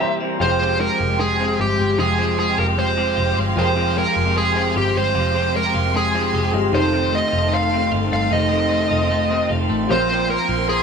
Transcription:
Already playing: clean electric guitar C3 E3 G3 A#3 C4 E4, upright piano C5 G5, lead electric guitar E5
0.00 upright piano E4 A#4 C5 A#5, clean electric guitar G4
0.20 clean electric guitar C3 G3 A#3 C4 E4
0.38 picked electric bass F1, clean electric guitar F3 G#3 C4, upright piano G#3 F4 C5 G5, string section G#3 F5 G5 C6, lead electric guitar C5
0.43 clean electric guitar G4
0.60 clean electric guitar F2 C3 F3 G#3 C4 G4
0.80 clean electric guitar G#3, lead electric guitar A#4
0.90 clean electric guitar F3 G#3 C4 G4
1.00 picked electric bass F1
1.10 clean electric guitar F3 G#3 C4 G4
1.19 clean electric guitar G#3, lead electric guitar G#4
1.39 clean electric guitar F2 C3 F3 G#3 C4 G4
1.60 picked electric bass G1, lead electric guitar G4
1.69 clean electric guitar F3 G#3 C4 G4
1.79 picked electric bass G1, clean electric guitar G#3
1.98 picked electric bass F1, clean electric guitar F3 G#3 C4 G4, lead electric guitar G#4
2.18 clean electric guitar F2 C3 F3 G#3 C4 G4
2.38 clean electric guitar G#3, lead electric guitar G#4
2.48 clean electric guitar F3 G#3 C4 G4
2.58 picked electric bass F1, clean electric guitar G4, lead electric guitar A#4
2.67 clean electric guitar F3 G#3 C4 G4
2.78 clean electric guitar G#3, lead electric guitar C5
2.96 clean electric guitar F2 C3 F3 G#3 C4 G4
3.17 picked electric bass F1, clean electric guitar G4
3.26 clean electric guitar F3 G#3 C4 G4
3.37 picked electric bass G1, clean electric guitar G#3
3.56 picked electric bass F1, clean electric guitar F3 G#3 C4 G4, upright piano F4 G#4 A#4 G5, lead electric guitar C5
3.76 clean electric guitar F2 C3 F3 G#3 C4 G4
3.96 clean electric guitar G#3, lead electric guitar A#4
4.06 clean electric guitar F3 G#3 C4 G4
4.16 picked electric bass F1
4.25 clean electric guitar F3 G#3 C4 G4
4.36 clean electric guitar G#3, lead electric guitar G#4
4.55 clean electric guitar F2 C3 F3 G#3 C4 G4
4.76 picked electric bass G1, clean electric guitar G4, lead electric guitar G4
4.84 clean electric guitar F3 G#3 C4 G4
4.95 picked electric bass G1, clean electric guitar G#3, lead electric guitar C5
5.13 picked electric bass F1, clean electric guitar F3 G#3 C4 G4
5.34 clean electric guitar F2 C3 F3 G#3 C4 G4
5.54 clean electric guitar G#3, lead electric guitar A#4
5.64 clean electric guitar F3 G#3 C4 G4
5.74 picked electric bass F1, clean electric guitar F4
5.84 clean electric guitar F3 G#3 C4 G4
5.94 clean electric guitar G#3, lead electric guitar G#4
6.14 clean electric guitar F2 C3 F3 G#3 C4 G4
6.34 picked electric bass F1, clean electric guitar G4
6.43 clean electric guitar F3 G#3 C4 G4
6.53 picked electric bass G1, clean electric guitar G#3, upright piano F4 G4 G#4 D#5
6.71 picked electric bass F1, clean electric guitar C3 D#3 A3, upright piano D#4 F4 A4 C5, string section A4 D#5 F5, lead electric guitar C5
6.75 clean electric guitar C4
6.93 clean electric guitar F2 C3 D#3 A3 C4
7.13 clean electric guitar A3, lead electric guitar D#5
7.23 clean electric guitar D#3 A3 C4
7.32 picked electric bass F1, clean electric guitar F4
7.43 clean electric guitar D#3 A3 C4
7.52 clean electric guitar A3, lead electric guitar F5
7.72 clean electric guitar F2 C3 D#3 A3 C4
7.91 picked electric bass G1, clean electric guitar F4
8.03 clean electric guitar D#3 A3 C4
8.11 picked electric bass G1, clean electric guitar A3, lead electric guitar F5
8.31 picked electric bass F1, clean electric guitar C3 D#3 A3 C4, lead electric guitar D#5
8.51 clean electric guitar F2 C3 D#3 A3 C4
8.71 clean electric guitar A3
8.81 clean electric guitar D#3 A3 C4
8.91 picked electric bass F1, clean electric guitar F4
9.02 clean electric guitar D#3 A3 C4
9.10 clean electric guitar A3
9.30 clean electric guitar F2 C3 D#3 A3 C4
9.49 picked electric bass F1, clean electric guitar F4
9.60 clean electric guitar D#3 A3 C4
9.69 picked electric bass A1, clean electric guitar A3
9.88 picked electric bass A#1, clean electric guitar A#2 F3 A#3 C4, upright piano C4 F4 A#4 C5, string section A#4 C5 C6, lead electric guitar C5
10.09 clean electric guitar A#2 F3 A#3 C4
10.29 clean electric guitar A#3, lead electric guitar A#4
10.39 clean electric guitar F3 A#3 C4
10.49 picked electric bass A#1, clean electric guitar F4
10.58 clean electric guitar F3 A#3 C4
10.69 clean electric guitar A#3, lead electric guitar G#4

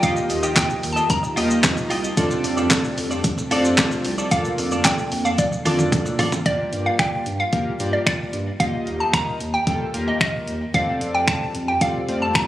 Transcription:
Already playing: string machine F4 A#4
0.02 sub bass D#1, string machine D#3 D#4 G4, analog polysynth A#3 D#4 F4 G4 D#5, clean electric guitar F4 G4 D#5, synth pluck F5, kick, closed hi-hat, shaker
0.16 muted clean electric guitar stroke, shaker
0.30 sub bass D#2, muted clean electric guitar stroke, open hi-hat, shaker
0.43 clean electric guitar F4 G4 D#5, shaker
0.56 sub bass D#1, clean electric guitar F4 G4 D#5, synth pluck G5, kick, snare, clap, closed hi-hat, shaker
0.70 muted clean electric guitar stroke, shaker
0.83 sub bass D#2, muted clean electric guitar stroke, open hi-hat, shaker
0.92 clean electric guitar D#5, synth pluck A5
0.97 clean electric guitar F4 G4, shaker
1.10 sub bass D#1, synth pluck A#5, muted clean electric guitar stroke, kick, closed hi-hat, shaker
1.23 muted clean electric guitar stroke, shaker
1.36 sub bass D#2, analog polysynth A#3 D#4 F4 G4 D#5, clean electric guitar F4 G4 D#5, open hi-hat, shaker
1.50 muted clean electric guitar stroke, shaker
1.63 sub bass D#1, muted clean electric guitar stroke, kick, snare, clap, closed hi-hat, shaker
1.77 muted clean electric guitar stroke, shaker
1.90 sub bass C2, clean electric guitar F4 G4 D#5, open hi-hat, shaker
2.04 clean electric guitar F4 G4 D#5, shaker
2.17 sub bass F1, string machine F3 C4 D4 A4, analog polysynth C4 D4 F4 A4 D5, clean electric guitar F4 A4 D5, kick, closed hi-hat, shaker
2.30 muted clean electric guitar stroke, shaker
2.44 sub bass F2, muted clean electric guitar stroke, open hi-hat, shaker
2.57 clean electric guitar F4 A4 D5, shaker
2.70 sub bass F1, clean electric guitar F4 A4 D5, kick, snare, clap, closed hi-hat, shaker
2.84 muted clean electric guitar stroke, shaker
2.97 sub bass F2, muted clean electric guitar stroke, open hi-hat, shaker
3.11 clean electric guitar F4 A4 D5, shaker
3.24 sub bass F1, muted clean electric guitar stroke, kick, closed hi-hat, shaker
3.38 muted clean electric guitar stroke, shaker
3.51 sub bass F2, analog polysynth C4 D4 F4 A4 D5, clean electric guitar F4 A4 D5, open hi-hat, shaker
3.65 muted clean electric guitar stroke, shaker
3.78 sub bass F1, clean electric guitar F4 A4 D5, kick, snare, clap, closed hi-hat, shaker
3.91 muted clean electric guitar stroke, shaker
4.05 sub bass C2, muted clean electric guitar stroke, open hi-hat, shaker
4.18 clean electric guitar F4 A4 D5, shaker
4.31 sub bass F1, analog polysynth A#3 D4 F4 A4 D5, string machine A#3 D4 A4, clean electric guitar F4 A4 D5, synth pluck F5, kick, closed hi-hat, shaker
4.45 muted clean electric guitar stroke, shaker
4.58 sub bass F2, muted clean electric guitar stroke, open hi-hat, shaker
4.71 clean electric guitar F4 A4 D5, shaker
4.85 sub bass F1, clean electric guitar F4 A4 D5, synth pluck G5, kick, snare, clap, closed hi-hat, shaker
4.98 muted clean electric guitar stroke, shaker
5.12 sub bass F2, muted clean electric guitar stroke, open hi-hat, shaker
5.25 clean electric guitar F4 A4 D5, synth pluck F5, shaker
5.38 sub bass F1, synth pluck D5, kick, closed hi-hat, high tom, shaker
5.52 muted clean electric guitar stroke, shaker
5.65 sub bass F2, analog polysynth A#3 D4 F4 A4 D5, clean electric guitar F4 A4 D5, open hi-hat, mid tom, shaker
5.79 muted clean electric guitar stroke, mid tom, shaker
5.92 sub bass F1, muted clean electric guitar stroke, kick, closed hi-hat, mid tom, shaker
6.06 muted clean electric guitar stroke, shaker
6.19 sub bass D1, clean electric guitar F4 A4 D5, floor tom, open hi-hat, shaker
6.32 muted clean electric guitar stroke, floor tom, shaker
6.46 sub bass G1, analog polysynth A#3 F4 G4 D5, synth pluck D5, kick, closed hi-hat
6.73 sub bass G2, closed hi-hat
6.86 synth pluck F5
6.99 sub bass G1, synth pluck G5, finger snap, kick, closed hi-hat
7.26 sub bass G2, closed hi-hat
7.40 synth pluck F5
7.53 sub bass G1, analog polysynth A#3 F4 G4 A#4, kick, closed hi-hat
7.80 sub bass G2, analog polysynth A#3 F4 G4 D5, closed hi-hat
7.93 synth pluck D5
8.06 sub bass G1, synth pluck D5, finger snap, kick, closed hi-hat
8.33 sub bass G2, closed hi-hat
8.60 sub bass D#1, analog polysynth A#3 F4 G4 D#5, synth pluck F5, kick, closed hi-hat
8.87 sub bass D#2, closed hi-hat
9.00 synth pluck A5
9.13 sub bass D#1, synth pluck A#5, finger snap, kick, closed hi-hat
9.40 sub bass D#2, closed hi-hat
9.54 synth pluck G5
9.67 sub bass D#1, analog polysynth A#3 F4 G4 A4, kick, closed hi-hat
9.94 sub bass D#2, analog polysynth A#3 F4 G4 A#4, closed hi-hat
10.08 synth pluck D#5
10.21 sub bass D#1, synth pluck D#5, finger snap, kick, closed hi-hat
10.48 sub bass D#2, closed hi-hat
10.74 sub bass F1, analog polysynth C4 F4 A4 D5, synth pluck F5, kick, closed hi-hat, swell
11.01 sub bass F2, closed hi-hat
11.14 synth pluck G5
11.28 sub bass F1, synth pluck A5, finger snap, kick, closed hi-hat
11.55 sub bass F2, closed hi-hat
11.68 synth pluck G5
11.81 sub bass F1, analog polysynth C4 F4 A4 D5, synth pluck F5, kick, closed hi-hat
12.08 sub bass F2, analog polysynth A3 C4 F4 D5, closed hi-hat
12.22 synth pluck A5
12.35 sub bass F1, synth pluck A#5, finger snap, kick, closed hi-hat

